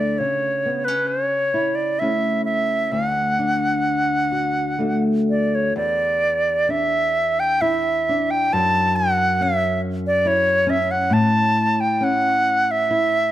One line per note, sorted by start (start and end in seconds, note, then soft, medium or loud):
0.00 0.19 D2 medium
0.00 0.69 A3 soft
0.00 0.28 D4 soft
0.00 1.53 E4 soft
0.00 0.20 D5 medium
0.18 2.93 C#3 medium
0.18 0.86 C#5 medium
0.66 0.88 B3 soft
0.85 2.00 C#4 soft
0.85 1.09 B4 medium
1.07 1.77 C#5 medium
1.54 2.00 E4 medium
1.75 2.01 D5 medium
1.99 4.78 A3 soft
1.99 3.03 C#4 soft
1.99 3.03 E4 medium
1.99 2.44 E5 medium
2.45 2.93 E5 medium
2.92 5.75 D2 medium
2.92 5.03 F#5 medium
3.39 4.79 D4 soft
4.32 4.79 F#4 soft
4.79 5.84 A3 soft
4.79 6.68 D4 soft
4.79 5.85 F#4 soft
5.30 5.56 D5 medium
5.55 5.76 C#5 medium
5.76 8.51 E2 medium
5.76 6.72 D5 medium
6.69 8.07 D4 soft
6.69 7.41 E5 medium
7.40 7.63 G5 medium
7.61 10.25 E4 soft
7.61 8.32 E5 medium
8.09 8.62 D4 soft
8.31 8.54 G5 medium
8.53 11.13 F#2 medium
8.53 8.97 A5 medium
8.96 9.44 F#5 medium
9.41 10.66 C#4 medium
9.41 9.81 E5 medium
10.07 10.29 D5 medium
10.25 12.90 E4 medium
10.25 10.71 C#5 medium
10.67 12.00 C#4 medium
10.67 10.93 E5 medium
10.91 11.15 F#5 medium
11.10 13.32 A2 medium
11.10 11.82 A5 medium
11.80 12.05 G5 medium
12.01 13.32 C#4 medium
12.01 12.73 F#5 medium
12.71 13.32 E5 medium
12.91 13.32 E4 medium